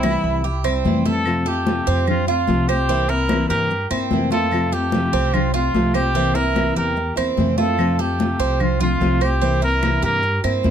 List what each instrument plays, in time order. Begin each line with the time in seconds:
Already playing: upright bass C2, trumpet E4
0.03 nylon-string guitar C3 E3 G3 C4 E4, cuban tres E4, high conga, claves
0.24 upright bass C2, high conga
0.44 cuban tres G4, muted nylon-string guitar stroke, high conga
0.64 nylon-string guitar G3 C4 E4, cuban tres C4, high conga, claves
0.84 upright bass F2, nylon-string guitar C3 E3 G3 C4 E4, high conga
1.05 nylon-string guitar G3 C4 E4, cuban tres A4, trumpet A4, high conga
1.25 nylon-string guitar C3 F3 A3 C4 F4, high conga, claves
1.46 nylon-string guitar A3 C4 F4, trumpet G4, cuban tres A4, high conga
1.66 nylon-string guitar C3 F3 A3 C4 F4, high conga
1.87 upright bass F2, cuban tres C4, high conga
2.06 trumpet F4, muted nylon-string guitar stroke, high conga, low conga, claves
2.27 nylon-string guitar A3 C4 F4, cuban tres F4, trumpet F4, high conga
2.47 upright bass C2, nylon-string guitar C3 F3 A3 C4 F4, high conga
2.68 nylon-string guitar A3 C4 F4, trumpet G4, cuban tres C5, claves
2.88 nylon-string guitar C3 E3 A#3 C4 E4, cuban tres C4, high conga
3.08 nylon-string guitar A#3 C4 E4, cuban tres E4, trumpet A#4, high conga
3.28 nylon-string guitar C3 E3 A#3 C4 E4, high conga, claves
3.49 upright bass G2, cuban tres G4, trumpet A#4, high conga
3.70 muted nylon-string guitar stroke, high conga
3.90 upright bass G2, nylon-string guitar A#3 C4 E4, cuban tres C4, high conga, claves
4.11 upright bass F2, nylon-string guitar C3 E3 A#3 C4 E4, high conga
4.31 nylon-string guitar A#3 C4 E4, cuban tres F4, trumpet A4, high conga
4.51 nylon-string guitar C3 F3 A3 C4 F4, high conga, claves
4.72 nylon-string guitar A3 C4 F4, trumpet G4, cuban tres A4, high conga
4.92 nylon-string guitar C3 F3 A3 C4 F4, high conga
5.13 upright bass C2, cuban tres C4, high conga
5.34 trumpet F4, muted nylon-string guitar stroke, high conga, low conga, claves
5.54 nylon-string guitar A3 C4 F4, cuban tres F4, trumpet F4, high conga
5.74 upright bass C2, nylon-string guitar C3 F3 A3 C4 F4, high conga
5.94 nylon-string guitar A3 C4 F4, trumpet G4, cuban tres C5, high conga, claves
6.14 nylon-string guitar C3 E3 A#3 C4 E4, cuban tres C4, high conga
6.34 nylon-string guitar A#3 C4 E4, cuban tres E4, trumpet A#4, high conga
6.55 nylon-string guitar C3 E3 A#3 C4 E4, high conga, claves
6.76 upright bass E2, cuban tres G4, trumpet A#4, high conga
6.96 muted nylon-string guitar stroke, high conga
7.16 upright bass E2, nylon-string guitar A#3 C4 E4, cuban tres C4, high conga, claves
7.37 upright bass F2, nylon-string guitar C3 E3 A#3 C4 E4, high conga
7.58 nylon-string guitar A#3 C4 E4, cuban tres F4, trumpet A4, high conga
7.78 nylon-string guitar C3 F3 A3 C4 F4, high conga, claves
7.99 nylon-string guitar A3 C4 F4, trumpet G4, cuban tres A4, high conga
8.19 nylon-string guitar C3 F3 A3 C4 F4, high conga
8.39 upright bass C2, cuban tres C4, high conga
8.60 trumpet F4, muted nylon-string guitar stroke, high conga, low conga, claves
8.80 nylon-string guitar A3 C4 F4, cuban tres F4, trumpet F4, high conga, low conga
9.00 upright bass C2, nylon-string guitar C3 F3 A3 C4 F4, high conga
9.20 nylon-string guitar A3 C4 F4, trumpet G4, cuban tres C5, claves
9.42 nylon-string guitar C3 E3 A#3 C4 E4, cuban tres C4, high conga
9.61 nylon-string guitar A#3 C4 E4, cuban tres E4, trumpet A#4, high conga
9.82 nylon-string guitar C3 E3 A#3 C4 E4, high conga, claves
10.03 upright bass G2, cuban tres G4, trumpet A#4, high conga
10.22 muted nylon-string guitar stroke, high conga
10.44 upright bass G2, nylon-string guitar A#3 C4 E4, cuban tres C4, high conga, claves
10.63 upright bass F2, nylon-string guitar C3 E3 A#3 C4 E4, high conga